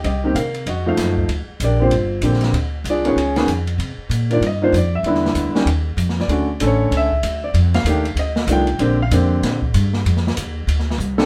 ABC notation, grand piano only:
X:1
M:4/4
L:1/8
Q:"Swing" 1/4=192
K:Bb
V:1 name="Grand piano"
[Ge]2 [Bf]2 [_Ge]3 z | z2 [DGBd] [Fc]3 z2 | z2 [DF_Ad] [_DA_d]3 z2 | z3 d e c d =e- |
=e4 z3 d- | d2 ^c2 =e3 d | z f3 e2 g2- | g f z6 |
z6 z A |]
V:2 name="Grand piano"
z [E,B,CG] z3 [F,A,Ef]3 | z3 [D,B,CG] z2 [D,B,CG]2 | z3 [E,_C_DF] z [E,CD_A] z2 | z3 [E,B,DF] z [E,B,DF] z2 |
[D,G,=B,=E]3 [_E,G,_DG] z4 | [D,A,^C^F] z [D,A,CA]3 z3 | z2 [E,A,DG] z3 [E,A,DF] z | [D,B,CG] z [D,B,CG]3 z3 |
z6 z [D,B,CG] |]